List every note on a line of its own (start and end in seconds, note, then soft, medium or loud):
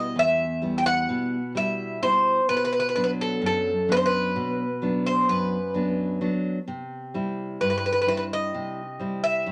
0.00 0.13 B2 medium
0.00 0.44 G3 soft
0.00 0.44 B3 soft
0.00 0.44 E4 soft
0.00 0.18 D#5 medium
0.16 1.06 E2 medium
0.16 0.76 E5 medium
0.62 1.36 G3 soft
0.62 1.37 B3 soft
0.62 1.37 E4 soft
0.78 0.85 G5 medium
0.86 1.52 F#5 medium
1.09 1.99 B2 medium
1.55 2.01 G3 soft
1.55 2.02 E4 soft
1.55 2.02 E5 medium
2.02 2.39 B2 soft
2.02 2.39 G3 soft
2.02 2.40 E4 medium
2.02 2.46 C5 medium
2.49 3.39 B2 medium
2.49 2.55 B4 medium
2.57 2.63 B4 medium
2.65 2.71 B4 medium
2.73 2.78 B4 medium
2.80 2.86 B4 medium
2.89 2.95 B4 medium
2.96 3.70 F#3 soft
2.96 3.70 B3 soft
2.96 3.70 D4 soft
2.96 3.02 B4 medium
3.04 3.10 B4 medium
3.21 3.44 A4 medium
3.42 4.32 F#2 medium
3.46 3.92 A4 medium
3.88 4.63 F#3 soft
3.88 4.63 B3 soft
3.88 4.63 D4 soft
3.88 3.96 B4 medium
3.97 4.03 C5 medium
4.06 5.06 B4 medium
4.36 5.25 B2 medium
4.82 5.56 F#3 soft
4.82 5.56 B3 soft
4.82 5.56 D4 medium
5.06 5.29 C5 medium
5.29 6.18 F#2 medium
5.29 6.29 B4 medium
5.74 6.20 F#3 soft
5.74 6.20 B3 soft
5.74 6.20 D4 soft
6.21 6.58 F#3 soft
6.21 6.58 B3 soft
6.21 6.58 D4 medium
6.68 7.57 C3 medium
7.14 7.88 G3 soft
7.14 7.88 C4 soft
7.14 7.89 E4 medium
7.61 8.51 G2 medium
7.61 7.68 B4 medium
7.70 7.76 B4 medium
7.78 7.84 B4 medium
7.86 7.91 B4 medium
7.93 7.99 B4 medium
8.02 8.07 B4 medium
8.07 8.81 G3 soft
8.07 8.81 C4 soft
8.07 8.81 E4 soft
8.07 8.14 B4 medium
8.17 8.23 B4 medium
8.33 9.23 D#5 medium
8.54 9.44 C3 medium
8.99 9.52 G3 soft
8.99 9.52 C4 soft
8.99 9.52 E4 soft
9.24 9.52 E5 medium
9.46 9.52 G2 medium